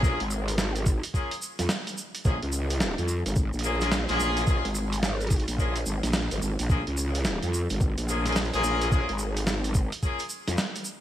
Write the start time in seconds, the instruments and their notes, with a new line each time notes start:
Already playing: wobble bass A#1
0.03 horn section A#3 C#4 F4 G#4, kick, shaker
0.20 wobble bass G#1, closed hi-hat
0.31 shaker
0.48 closed hi-hat, shaker
0.58 snare, shaker
0.76 closed hi-hat, shaker
0.86 kick, shaker
1.03 closed hi-hat, shaker
1.14 horn section A#3 C#4 F4 G#4, kick, shaker
1.31 closed hi-hat, shaker
1.42 shaker
1.59 wobble bass F2, snare, closed hi-hat, shaker
1.69 snare, shaker
1.87 closed hi-hat, shaker
1.98 shaker
2.15 closed hi-hat, shaker
2.25 wobble bass A#1, horn section A#3 C#4 F4 G#4, kick, shaker
2.43 wobble bass C#2, closed hi-hat
2.52 shaker
2.70 closed hi-hat, shaker
2.80 snare, shaker
2.98 wobble bass F2, closed hi-hat, shaker
3.08 shaker
3.26 wobble bass G#1, closed hi-hat, shaker
3.36 kick, shaker
3.53 wobble bass A#1, shaker
3.59 closed hi-hat
3.64 horn section A#3 C#4 F4 G#4, shaker
3.81 horn section A#3 C#4 F4 G#4, snare, closed hi-hat, shaker
3.92 snare, shaker
4.08 wobble bass A#1, horn section A#3 C#4 F4 G#4, closed hi-hat, shaker
4.19 wobble bass A#1, shaker
4.37 closed hi-hat, shaker
4.47 horn section A#3 C#4 F4 G#4, kick, shaker
4.65 wobble bass G#1, closed hi-hat
4.75 shaker
4.92 closed hi-hat, shaker
5.03 snare, shaker
5.20 closed hi-hat, shaker
5.27 closed hi-hat
5.30 kick, closed hi-hat, shaker
5.36 closed hi-hat
5.40 closed hi-hat
5.48 wobble bass A#1, closed hi-hat, shaker
5.58 horn section A#3 C#4 F4 G#4, kick, shaker
5.76 closed hi-hat, shaker
5.86 wobble bass G#1, shaker
6.03 wobble bass A#1, snare, closed hi-hat, shaker
6.13 snare, shaker
6.31 wobble bass G#1, closed hi-hat, shaker
6.42 wobble bass G#1, shaker
6.59 wobble bass A#1, closed hi-hat, shaker
6.70 wobble bass A#1, horn section A#3 C#4 F4 G#4, kick, shaker
6.87 wobble bass C#2, closed hi-hat
6.97 shaker
7.15 closed hi-hat, shaker
7.24 snare, shaker
7.43 wobble bass F2, closed hi-hat, shaker
7.54 shaker
7.70 wobble bass G#1, closed hi-hat, shaker
7.81 kick, shaker
7.98 wobble bass A#1, closed hi-hat, shaker
8.08 horn section A#3 C#4 F4 G#4, shaker
8.26 horn section A#3 C#4 F4 G#4, snare, closed hi-hat, shaker
8.32 snare, closed hi-hat, shaker
8.36 closed hi-hat
8.42 closed hi-hat
8.45 closed hi-hat
8.53 wobble bass A#1, horn section A#3 C#4 F4 G#4, closed hi-hat, shaker
8.64 wobble bass A#1, shaker
8.81 closed hi-hat, shaker
8.92 horn section A#3 C#4 F4 G#4, kick, shaker
9.09 wobble bass G#1, closed hi-hat
9.19 shaker
9.37 closed hi-hat, shaker
9.47 snare, shaker
9.64 closed hi-hat, shaker
9.75 kick, shaker
9.92 closed hi-hat, shaker
10.03 horn section A#3 C#4 F4 G#4, kick, shaker
10.19 closed hi-hat, shaker
10.29 shaker
10.48 wobble bass F2, snare, closed hi-hat, shaker
10.57 snare, shaker
10.76 closed hi-hat, shaker
10.85 shaker